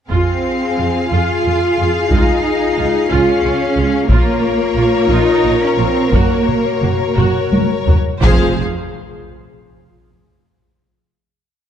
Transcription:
0.10 double bass section F2, cello section C4, french horn section F4 G#4, viola section F4, violin section G#4 F5, taiko
0.78 double bass section F2, viola section F4
1.12 double bass section F2, cello section F4, viola section F4
1.45 double bass section F2, viola section F4
1.79 double bass section F2, viola section F4
2.11 double bass section C#2, cello section D#4, viola section F4, taiko
2.78 double bass section C#2, viola section F4
3.10 double bass section C#2, cello section C#4, viola section F4
3.44 double bass section C#2, viola section F4
3.76 double bass section C#2, viola section F4
4.07 double bass section A#1, cello section A#3, french horn section F4 A#4, violin section A#4 C#5, taiko
4.11 viola section F4
4.76 double bass section A#1, viola section F4
5.09 double bass section A#1, cello section D#4, viola section F4
5.44 double bass section A#1, viola section F4
5.62 cello section C#4
5.78 double bass section A#1, cello section C4, viola section F4
6.12 double bass section F#1, cello section A#3, viola section F#4, french horn section F#4, taiko
6.48 taiko mid
6.82 double bass section F#1, viola section F#4, taiko mid
7.16 double bass section F#1, viola section F#4, taiko mid
7.51 double bass section F#1, viola section F#4, taiko high
7.88 double bass section F#1, viola section F#4, taiko low
8.23 double bass section F1, cello section F3, french horn section F4 G#4, viola section G#4, violin section C5 F5, taiko

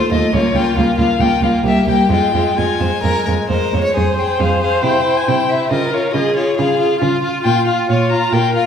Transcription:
Already playing: viola A3, violin F4 C5
0.11 cello D#2, viola A3, violin F4 D#5
0.33 cello C#2, viola A#3, violin F4 C#5
0.55 cello C#2, viola A#3, violin F4 G5
0.76 cello C#2, viola A#3, violin F4 F5
0.98 cello C#2, viola A#3, violin F4 F5
1.19 cello C#2, viola A#3, violin F4 G5
1.42 cello C#2, viola A#3, violin F4 F5
1.64 cello C2, viola A#3, violin G4 E5
1.87 cello C2, viola A#3, violin G4 G5
2.10 cello F2, viola G#3, violin F4 G5
2.34 cello F2, viola G#3, violin F4
2.57 cello F2, viola G#3, violin F4 G#5
2.80 cello F2, viola G#3, violin C5
3.03 cello F2, viola G#3, violin A#4
3.25 cello F2, viola G#3, violin A#4
3.48 cello F2, viola G#3, violin A#4 C5
3.73 cello F2, viola G#3, violin C#5
3.84 violin C#5
3.95 cello F2, violin G#4 C5, viola C5
4.18 violin G#4 G5
4.39 cello F2, violin G#4 F5
4.61 violin G#4 F5
4.83 cello C3, violin E4 G5
5.05 violin E4
5.17 violin G#5
5.26 cello C3, violin E4 G5
5.49 violin E4 E5
5.70 cello C#3, violin F4 D#5, viola A#4
5.93 violin F4 C#5
6.13 cello C#3, violin F4 D#5, viola G#4
6.36 violin F4 C#5
6.56 cello C#3, violin F4 F5, viola G#4
6.79 violin F4
7.01 cello C#3, violin F4, viola F4
7.23 violin F4
7.43 cello A#2, violin F4 G5
7.66 violin F4 F5
7.89 cello A#2, violin F4 C#5
8.10 violin F4 A#5
8.32 cello A#2, violin F4 G5, viola A#4
8.55 violin F4 F5

